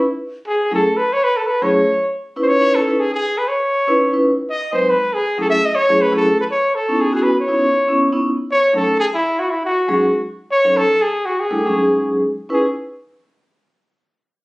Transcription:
0.47 trumpet G#4
0.71 vibraphone F#3 A3 C#4 E4 G#4, trumpet A4
0.97 trumpet B4
1.13 trumpet C#5
1.24 trumpet B4
1.37 trumpet A4
1.47 trumpet B4
1.61 vibraphone F#3 A3 C#4 E4 G#4, trumpet C#5
2.36 vibraphone C#4 D#4 E4 B4
2.42 trumpet C5
2.48 trumpet C#5
2.61 vibraphone C#4 D#4 E4 B4
2.75 trumpet A4
2.88 vibraphone C#4 D#4 E4 B4
3.00 trumpet G#4
3.14 trumpet G#4
3.38 trumpet B4
3.48 trumpet C#5
3.87 vibraphone C#4 D#4 E4 B4
4.13 vibraphone C#4 D#4 E4 B4
4.49 trumpet D#5
4.72 vibraphone F#3 G#3 C4 D#4 B4, trumpet C5
4.90 trumpet B4
5.14 trumpet G#4
5.38 vibraphone F#3 A3 C#4 E4 G#4, trumpet A4
5.50 trumpet E5
5.65 trumpet D#5
5.75 trumpet C#5
5.89 vibraphone F#3 A3 C#4 E4 G#4
6.02 trumpet B4
6.12 vibraphone F#3 A3 C#4 E4 G#4
6.16 trumpet A4
6.41 trumpet B4
6.51 trumpet C#5
6.75 trumpet A4
6.88 vibraphone B3 C#4 D#4 E4
7.01 trumpet G#4
7.13 vibraphone B3 C#4 E4 F#4, trumpet G#4
7.23 trumpet B4
7.40 trumpet C#5
7.48 vibraphone B3 C#4 D#4 E4
7.87 vibraphone B3 C#4 E4
8.12 vibraphone B3 C#4 D#4 E4
8.51 trumpet C#5
8.73 vibraphone F#3 A3 C#4 D#4, trumpet A4
9.00 trumpet G#4
9.14 trumpet E4
9.40 trumpet F#4
9.50 trumpet E4
9.65 trumpet F#4
9.88 vibraphone F#3 G#3 C#4 D#4 G#4, trumpet F#4
10.51 trumpet C#5
10.64 vibraphone F#3 C#4 D#4 A4
10.77 trumpet A4
11.02 trumpet G#4
11.26 trumpet F#4
11.40 trumpet G#4
11.50 vibraphone G3 A3 D4 E4 A4
11.66 vibraphone F#3 G#3 C#4 D#4 G#4
12.49 vibraphone C#4 D#4 E4 B4, trumpet G#4

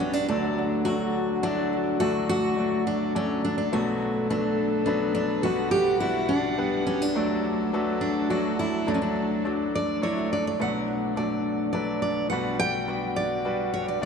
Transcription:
Already playing: grand piano B1 B2 G3 B3 D4 F#4 B4, harp F#3 A3 B3 F#4, french horn F#4
0.00 steel-string acoustic guitar C#4, harp D4
0.13 steel-string acoustic guitar D4
0.28 grand piano D2 D3 F#3 A3 D4 A4 D5, harp A3, steel-string acoustic guitar D4, french horn F#4
0.58 harp D4
0.85 grand piano F#3 A3 D4 A4 D5, harp A3 D4 F#4, steel-string acoustic guitar F#4
1.43 grand piano F#3 A3 D4 A4 D5, steel-string acoustic guitar D4, harp E4
1.58 harp F#4
1.73 harp D4
2.00 grand piano D2 D3 F#3 A3 D4 A4 D5, harp A3, steel-string acoustic guitar F#4
2.29 harp D4, steel-string acoustic guitar F#4
2.56 grand piano F#3 A3 D4 A4 D5, harp A3 D4 F#4
2.87 steel-string acoustic guitar D4
3.15 grand piano F#3 A3 D4 A4 D5, steel-string acoustic guitar C#4, harp F#4
3.45 steel-string acoustic guitar D4, harp D4
3.58 steel-string acoustic guitar D4
3.72 grand piano B1 B2 F#3 B3 D4 A4 B4, string section A3 D4 B4, harp A3, steel-string acoustic guitar F#4, french horn A4
4.02 harp D4
4.30 grand piano F#3 B3 D4 A4 B4, harp A3 D4 F#4, steel-string acoustic guitar D4
4.86 grand piano F#3 B3 D4 A4 B4, steel-string acoustic guitar D4, harp F#4
5.15 steel-string acoustic guitar D4, harp D4
5.43 grand piano B1 B2 G3 B3 D4 F#4 B4, string section B2 G3 F#5, harp B3, steel-string acoustic guitar F#4, french horn F#4
5.71 harp D4, steel-string acoustic guitar G4
6.00 grand piano G3 B3 D4 F#4 B4, harp B3 D4 F#4, steel-string acoustic guitar E4
6.29 steel-string acoustic guitar D4
6.58 grand piano G3 B3 D4 B4 F#5, french horn G4
6.87 steel-string acoustic guitar C#4, harp D4
7.02 steel-string acoustic guitar D4
7.15 grand piano D2 D3 F#3 A3 D4 A4 D5, string section F#3 D4 A4, harp A3, french horn F#4
7.45 harp D4
7.73 grand piano F#3 A3 D4 A4 B4, harp A3 D4 F#4
8.01 steel-string acoustic guitar D4
8.30 grand piano F#3 A3 D4 A4 D5, steel-string acoustic guitar F#4, harp F#4
8.59 harp D4, steel-string acoustic guitar E4
8.87 grand piano D2 D3 F#3 A3 D4 A4 D5, harp A3, steel-string acoustic guitar D4
8.94 steel-string acoustic guitar C#4
9.02 steel-string acoustic guitar D4
9.16 harp D4
9.44 grand piano F#3 A3 D4 A4 D5, harp A3 D4 F#4
9.75 steel-string acoustic guitar D5
10.02 grand piano F#3 A3 D4 A4 D5, harp E4, french horn E4, steel-string acoustic guitar C#5
10.17 harp F#4
10.31 french horn D4, harp D4, steel-string acoustic guitar D5
10.47 steel-string acoustic guitar D5
10.59 grand piano B1 B2 F#3 D4 A4 B4, harp A3, french horn D4, steel-string acoustic guitar F#5
10.88 harp D4
11.16 grand piano F#3 D4 A4 D5, harp A3 D4 F#4, steel-string acoustic guitar D5
11.73 grand piano F#3 D4 A4 B4, harp F#4, steel-string acoustic guitar D5
12.02 harp D4, steel-string acoustic guitar D5
12.30 grand piano B1 B2 G3 D4 F#4 B4, harp B3, french horn F#4, steel-string acoustic guitar F#5
12.59 harp D4, steel-string acoustic guitar G5
12.88 grand piano G3 D4 F#4 B4, harp B3 D4 F#4
13.16 steel-string acoustic guitar D5
13.45 grand piano G3 D4 F#4 B4, harp F#4
13.74 harp D4, steel-string acoustic guitar C#5
13.88 steel-string acoustic guitar D5
14.02 grand piano D2 D3 A3 D4 F#4 D5

